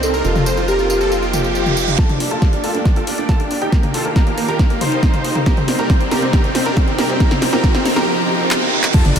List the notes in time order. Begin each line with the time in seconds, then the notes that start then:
Already playing: C2 C3 G3 A#3 D4 D#4
0.03 C4 A4, tambourine
0.14 A#4, tambourine
0.25 F1 F3 A#3 C4 F4 G4, tambourine
0.35 F4, mid tom, tambourine
0.46 C5, tambourine
0.57 F4, tambourine
0.68 G4 A#4, tambourine
0.79 F4, tambourine
0.90 F4, tambourine
1.01 A4, tambourine
1.12 F4, tambourine, reverse cymbal
1.22 F4, tambourine
1.33 F4 G4, mid tom, tambourine
1.44 tambourine
1.55 tambourine
1.66 mid tom, tambourine
1.77 tambourine
1.88 mid tom, tambourine
1.98 A3 A#3 F4 G4 A5, kick, snare, closed hi-hat, riser
2.09 G1 D4 D5, closed hi-hat, mid tom
2.20 G1 D4 D5, open hi-hat
2.31 G1 F4 A4 A5, closed hi-hat
2.42 D4 D5, kick, snare, closed hi-hat
2.53 G1 D4 D5, closed hi-hat
2.64 G1 F4 A4 A5, open hi-hat
2.75 G2 D4 D5, closed hi-hat
2.85 D4 D5, kick, snare, closed hi-hat
2.96 G1 F4 A4 A5, closed hi-hat
3.07 G1 D4 D5, open hi-hat
3.18 G1 D4 D5, closed hi-hat
3.29 A4 A5, kick, snare, closed hi-hat
3.40 G1 D4 D5, closed hi-hat
3.51 G1 D4 D5, open hi-hat
3.62 A1 D#4 G4 G5, closed hi-hat
3.72 D#3 A#3 D#4 F4 A#4, kick, snare, closed hi-hat
3.83 D#2 A#3 A#4, closed hi-hat, mid tom
3.94 D#2 F4 A4 A5, open hi-hat
4.05 D#2 A#3 A#4
4.16 G4 A#4 A#5, kick, snare, closed hi-hat
4.27 D#2 A#3 A#4, closed hi-hat
4.38 D#2 A#3 A#4, open hi-hat
4.48 D#1 G4 A#4 A#5, closed hi-hat
4.59 A#3 A#4, kick, snare, closed hi-hat
4.70 D#2 A#3 A#4, closed hi-hat
4.81 D#2 D#4 C5 C6, open hi-hat, mid tom
4.92 D#2, closed hi-hat
5.03 kick, snare, closed hi-hat
5.14 D#2, closed hi-hat, mid tom
5.25 D#2, open hi-hat
5.35 F2, closed hi-hat, mid tom
5.46 C3 G3 A#3 D4 G4 A#4 A#5, kick, snare, closed hi-hat
5.57 C2 C4 C5, closed hi-hat, mid tom
5.68 C2 C4 C5, snare, open hi-hat
5.79 C2 G4 A#4 A#5, closed hi-hat
5.90 C4 C5, kick, snare, closed hi-hat
6.01 C2 C4 C5, closed hi-hat
6.11 C2 G4 A#4 A#5, snare, open hi-hat
6.22 G1 C4 C5, closed hi-hat
6.33 G4 A#4 A#5, kick, snare, closed hi-hat
6.44 C2 C4 C5, closed hi-hat
6.55 C2 C4 C5, snare, open hi-hat
6.66 C2 G4 A#4 A#5, closed hi-hat
6.77 C4 C5, kick, snare, closed hi-hat
6.88 C2 C4 C5, closed hi-hat
6.99 C2 G4 A#4 A#5, snare, open hi-hat
7.09 D2 C4 C5, closed hi-hat
7.20 F3 C4 G4 A#4 A#5, kick, snare, closed hi-hat
7.31 C4 C5, snare, closed hi-hat, mid tom
7.42 F1 C4 C5, snare, open hi-hat
7.53 F1 G4 A#4 A#5, snare, closed hi-hat
7.64 G4 A#4 A#5, kick, snare, closed hi-hat
7.74 C4 C5, snare, closed hi-hat
7.85 F1 C4 C5, snare, open hi-hat
7.96 F2 G4 A#4 A#5, snare, closed hi-hat
8.07 reverse cymbal
8.51 clap
8.83 clap
8.94 A3 A#3 F4 G4 A4 A5, kick, closed hi-hat, crash, tambourine, impact
9.05 G1 D4 D5, closed hi-hat, mid tom, tambourine
9.16 G1 D4 D5, open hi-hat, tambourine